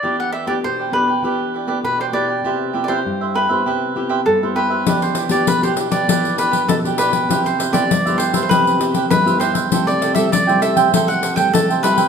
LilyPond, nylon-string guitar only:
\new Staff \with { instrumentName = "Nylon-string guitar" } { \time 4/4 \key e \minor \tempo 4 = 99 << { <b d' g'>8 r16 <b d' g'>8. <b d' g'>16 r16 <b d' g'>8. <b d' g'>8. <b d' g'>8 | <b e' g'>8 <b e' g'>16 <e' g'>4 <b e' g'>8. <b e' g'>8. <b e' g'>16 <b e' g'>8 | <b d' g'>8. <b d' g'>8 <b d' g'>8 <b d' g'>16 <b d' g'>16 r16 <b d' g'>8. <b d' g'>8. | <b e' g'>8 r16 <b e' g'>8 <b e' g'>8 <b e' g'>16 <b e' g'>8 <b e' g'>8. <b e' g'>8. |
<g a e'>8. <g a e'>8 <g a e'>8. <g a e'>8 r16 <g a e'>8. <g a e'>16 r16 | } \\ { e4 b,4 e4 b,4 | c4 g,4 c4 g,4 | e4 b,4 e4 b,4 | c4 g,4 c4 g,4 |
c4 c4 c4 c4 | } >> }